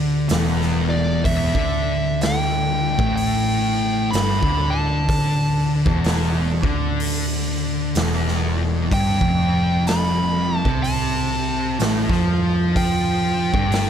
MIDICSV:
0, 0, Header, 1, 5, 480
1, 0, Start_track
1, 0, Tempo, 958466
1, 630, Time_signature, 4, 2, 24, 8
1, 6961, End_track
2, 0, Start_track
2, 0, Title_t, "Lead electric guitar"
2, 0, Program_c, 0, 29
2, 448, Note_on_c, 0, 74, 72
2, 624, Note_off_c, 0, 74, 0
2, 626, Note_on_c, 0, 76, 96
2, 1112, Note_on_c, 0, 79, 92
2, 1122, Note_off_c, 0, 76, 0
2, 1575, Note_off_c, 0, 79, 0
2, 1581, Note_on_c, 0, 79, 97
2, 2057, Note_on_c, 0, 83, 105
2, 2080, Note_off_c, 0, 79, 0
2, 2355, Note_on_c, 0, 81, 91
2, 2369, Note_off_c, 0, 83, 0
2, 3003, Note_off_c, 0, 81, 0
2, 4475, Note_on_c, 0, 79, 97
2, 4932, Note_off_c, 0, 79, 0
2, 4947, Note_on_c, 0, 83, 105
2, 5297, Note_off_c, 0, 83, 0
2, 5297, Note_on_c, 0, 81, 105
2, 5424, Note_off_c, 0, 81, 0
2, 5424, Note_on_c, 0, 81, 89
2, 6184, Note_off_c, 0, 81, 0
2, 6392, Note_on_c, 0, 79, 111
2, 6961, Note_off_c, 0, 79, 0
2, 6961, End_track
3, 0, Start_track
3, 0, Title_t, "Distorted electric guitar"
3, 0, Program_c, 1, 30
3, 0, Note_on_c, 1, 50, 107
3, 145, Note_off_c, 1, 50, 0
3, 145, Note_on_c, 1, 40, 111
3, 621, Note_off_c, 1, 40, 0
3, 627, Note_on_c, 1, 40, 108
3, 768, Note_off_c, 1, 40, 0
3, 773, Note_on_c, 1, 50, 106
3, 1490, Note_off_c, 1, 50, 0
3, 1493, Note_on_c, 1, 45, 97
3, 2061, Note_off_c, 1, 45, 0
3, 2063, Note_on_c, 1, 43, 111
3, 2206, Note_off_c, 1, 43, 0
3, 2215, Note_on_c, 1, 50, 101
3, 2931, Note_off_c, 1, 50, 0
3, 2933, Note_on_c, 1, 40, 100
3, 3315, Note_off_c, 1, 40, 0
3, 3320, Note_on_c, 1, 50, 100
3, 3980, Note_off_c, 1, 50, 0
3, 3985, Note_on_c, 1, 40, 108
3, 4460, Note_off_c, 1, 40, 0
3, 4462, Note_on_c, 1, 43, 106
3, 4605, Note_off_c, 1, 43, 0
3, 4608, Note_on_c, 1, 41, 93
3, 5327, Note_off_c, 1, 41, 0
3, 5333, Note_on_c, 1, 48, 92
3, 5901, Note_off_c, 1, 48, 0
3, 5909, Note_on_c, 1, 45, 107
3, 6059, Note_off_c, 1, 45, 0
3, 6059, Note_on_c, 1, 53, 106
3, 6774, Note_off_c, 1, 53, 0
3, 6775, Note_on_c, 1, 43, 96
3, 6961, Note_off_c, 1, 43, 0
3, 6961, End_track
4, 0, Start_track
4, 0, Title_t, "Picked electric bass"
4, 0, Program_c, 2, 34
4, 0, Note_on_c, 2, 38, 92
4, 128, Note_off_c, 2, 38, 0
4, 151, Note_on_c, 2, 28, 93
4, 610, Note_off_c, 2, 28, 0
4, 627, Note_on_c, 2, 28, 96
4, 767, Note_off_c, 2, 28, 0
4, 776, Note_on_c, 2, 38, 94
4, 1477, Note_off_c, 2, 38, 0
4, 1495, Note_on_c, 2, 33, 90
4, 2048, Note_off_c, 2, 33, 0
4, 2071, Note_on_c, 2, 31, 96
4, 2208, Note_off_c, 2, 31, 0
4, 2218, Note_on_c, 2, 38, 90
4, 2917, Note_off_c, 2, 38, 0
4, 2936, Note_on_c, 2, 28, 89
4, 3305, Note_off_c, 2, 28, 0
4, 3323, Note_on_c, 2, 38, 88
4, 3967, Note_off_c, 2, 38, 0
4, 3985, Note_on_c, 2, 28, 94
4, 4447, Note_off_c, 2, 28, 0
4, 4464, Note_on_c, 2, 31, 95
4, 4604, Note_off_c, 2, 31, 0
4, 4613, Note_on_c, 2, 29, 100
4, 5315, Note_off_c, 2, 29, 0
4, 5335, Note_on_c, 2, 36, 86
4, 5888, Note_off_c, 2, 36, 0
4, 5911, Note_on_c, 2, 33, 89
4, 6048, Note_off_c, 2, 33, 0
4, 6056, Note_on_c, 2, 41, 90
4, 6757, Note_off_c, 2, 41, 0
4, 6780, Note_on_c, 2, 31, 92
4, 6961, Note_off_c, 2, 31, 0
4, 6961, End_track
5, 0, Start_track
5, 0, Title_t, "Drums"
5, 145, Note_on_c, 9, 46, 54
5, 156, Note_on_c, 9, 38, 110
5, 195, Note_off_c, 9, 46, 0
5, 206, Note_off_c, 9, 38, 0
5, 306, Note_on_c, 9, 38, 33
5, 356, Note_off_c, 9, 38, 0
5, 626, Note_on_c, 9, 36, 106
5, 627, Note_on_c, 9, 46, 60
5, 676, Note_off_c, 9, 36, 0
5, 677, Note_off_c, 9, 46, 0
5, 776, Note_on_c, 9, 36, 98
5, 826, Note_off_c, 9, 36, 0
5, 1108, Note_on_c, 9, 46, 53
5, 1119, Note_on_c, 9, 38, 106
5, 1158, Note_off_c, 9, 46, 0
5, 1169, Note_off_c, 9, 38, 0
5, 1496, Note_on_c, 9, 36, 110
5, 1547, Note_off_c, 9, 36, 0
5, 1589, Note_on_c, 9, 46, 55
5, 1639, Note_off_c, 9, 46, 0
5, 2070, Note_on_c, 9, 46, 56
5, 2080, Note_on_c, 9, 38, 108
5, 2120, Note_off_c, 9, 46, 0
5, 2130, Note_off_c, 9, 38, 0
5, 2217, Note_on_c, 9, 36, 100
5, 2267, Note_off_c, 9, 36, 0
5, 2548, Note_on_c, 9, 36, 111
5, 2552, Note_on_c, 9, 46, 61
5, 2598, Note_off_c, 9, 36, 0
5, 2602, Note_off_c, 9, 46, 0
5, 2934, Note_on_c, 9, 36, 114
5, 2985, Note_off_c, 9, 36, 0
5, 3027, Note_on_c, 9, 46, 58
5, 3037, Note_on_c, 9, 38, 100
5, 3077, Note_off_c, 9, 46, 0
5, 3087, Note_off_c, 9, 38, 0
5, 3323, Note_on_c, 9, 36, 105
5, 3373, Note_off_c, 9, 36, 0
5, 3506, Note_on_c, 9, 46, 62
5, 3556, Note_off_c, 9, 46, 0
5, 3982, Note_on_c, 9, 46, 55
5, 3992, Note_on_c, 9, 38, 101
5, 4032, Note_off_c, 9, 46, 0
5, 4042, Note_off_c, 9, 38, 0
5, 4145, Note_on_c, 9, 38, 33
5, 4195, Note_off_c, 9, 38, 0
5, 4465, Note_on_c, 9, 36, 105
5, 4467, Note_on_c, 9, 46, 61
5, 4515, Note_off_c, 9, 36, 0
5, 4517, Note_off_c, 9, 46, 0
5, 4613, Note_on_c, 9, 36, 105
5, 4663, Note_off_c, 9, 36, 0
5, 4942, Note_on_c, 9, 46, 53
5, 4953, Note_on_c, 9, 38, 114
5, 4992, Note_off_c, 9, 46, 0
5, 5003, Note_off_c, 9, 38, 0
5, 5335, Note_on_c, 9, 36, 104
5, 5385, Note_off_c, 9, 36, 0
5, 5429, Note_on_c, 9, 46, 55
5, 5480, Note_off_c, 9, 46, 0
5, 5908, Note_on_c, 9, 46, 57
5, 5919, Note_on_c, 9, 38, 112
5, 5958, Note_off_c, 9, 46, 0
5, 5969, Note_off_c, 9, 38, 0
5, 6057, Note_on_c, 9, 36, 104
5, 6070, Note_on_c, 9, 38, 32
5, 6107, Note_off_c, 9, 36, 0
5, 6120, Note_off_c, 9, 38, 0
5, 6390, Note_on_c, 9, 36, 104
5, 6392, Note_on_c, 9, 46, 60
5, 6440, Note_off_c, 9, 36, 0
5, 6442, Note_off_c, 9, 46, 0
5, 6779, Note_on_c, 9, 36, 104
5, 6829, Note_off_c, 9, 36, 0
5, 6870, Note_on_c, 9, 46, 59
5, 6880, Note_on_c, 9, 38, 102
5, 6920, Note_off_c, 9, 46, 0
5, 6930, Note_off_c, 9, 38, 0
5, 6961, End_track
0, 0, End_of_file